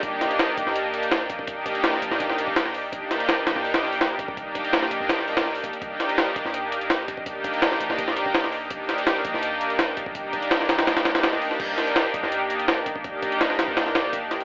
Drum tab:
CC |----------------|----------------|----------------|----------------|
HH |x-xxx-x-x-xxx-x-|x-xxx-x-x-x-x-o-|x-xxx-x-ox-ox-x-|x-xxx-x-x-ox-oxx|
SD |--o-o--o----o---|----oo-o-o--oo--|--o-o-oo-oo-o---|----oo--oo-oo---|
BD |o-----o-------oo|o-o-----o--o----|o-------------oo|o-o-----------o-|

CC |----------------|----------------|----------------|----------------|
HH |x-xxx-x-x-xxx-x-|x-xxx-x-x-x-x-o-|x-xxx-x-x-xxx-x-|x-xxx-xxxxxxx-o-|
SD |--o-o--o----o---|----oo-o-o--oo--|--o-o--o----o---|----oooooooooo-o|
BD |o-----o-------oo|o-o-----o--o----|o-----o-------oo|o-o-------------|

CC |x---------------|----------------|
HH |x-xxx-x-x-xxx-x-|x-xxx-x-x-x-x-xx|
SD |--o-o--o----o---|----ooo-ooo---o-|
BD |o-----o-------oo|o-o---------o---|